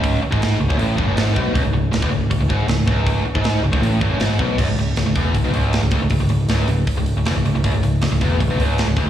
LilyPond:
<<
  \new Staff \with { instrumentName = "Distorted electric guitar" } { \clef bass \time 4/4 \key cis \minor \tempo 4 = 158 cis,8 r16 gis,8. cis,16 cis,16 a,8 g,16 fis,16 gis,8 b,8 | cis,16 cis,16 cis,8 cis,16 e,16 cis,8 cis,16 cis,16 gis,8 cis,8 cis,8~ | cis,8 r16 gis,8. cis,16 cis,16 a,8 g,16 fis,16 gis,8 b,8 | cis,16 cis,16 cis,8 cis,16 cis,16 e,8 cis,16 b,16 cis,8. cis,16 d,16 cis,16 |
cis,16 cis,16 cis,8 cis,8 cis,8 r16 cis,8 cis,16 e,16 cis,16 cis,16 cis,16 | cis,16 cis,16 cis,8 cis,16 cis,16 e,8 cis,16 b,16 cis,8. cis,16 d,16 r16 | }
  \new Staff \with { instrumentName = "Picked electric bass" } { \clef bass \time 4/4 \key cis \minor cis,,8 r16 gis,,8. cis,,16 cis,,16 a,,8 g,,16 fis,,16 gis,,8 b,,8 | cis,,16 cis,,16 cis,,8 cis,,16 e,,16 cis,,8 cis,,16 cis,,16 gis,,8 cis,,8 cis,,8~ | cis,,8 r16 gis,,8. cis,,16 cis,,16 a,,8 g,,16 fis,,16 gis,,8 b,,8 | cis,,16 cis,,16 cis,,8 cis,,16 cis,,16 e,,8 cis,,16 b,,16 cis,,8. cis,,16 d,,16 cis,,16 |
cis,,16 cis,,16 cis,,8 cis,,8 cis,,8 r16 cis,,8 cis,,16 e,,16 cis,,16 cis,,16 cis,,16 | cis,,16 cis,,16 cis,,8 cis,,16 cis,,16 e,,8 cis,,16 b,,16 cis,,8. cis,,16 d,,16 cis,,16 | }
  \new DrumStaff \with { instrumentName = "Drums" } \drummode { \time 4/4 <hho bd>8. bd16 <hho sn>8. bd16 hho8 bd8 <hho sn>8 bd8 | <hho bd>4 <hho sn>16 bd8. <hho bd>8 bd8 <hho sn>8 bd8 | <hho bd>8. bd16 <hho sn>8. bd16 hho8 bd8 <hho sn>8 bd8 | <cymc bd>8 hho8 <hho sn>8 <hho bd>8 <hho bd>8 hho8 <hho sn>8 <hho bd>8 |
<hho bd>8 hho8 <hho sn>8 hho8 <hho bd>8 hho8 <hho sn>8 hho8 | <hho bd>8 hho8 <hho sn>8 <hho bd>8 <hho bd>8 hho8 <hho sn>8 <hho bd>8 | }
>>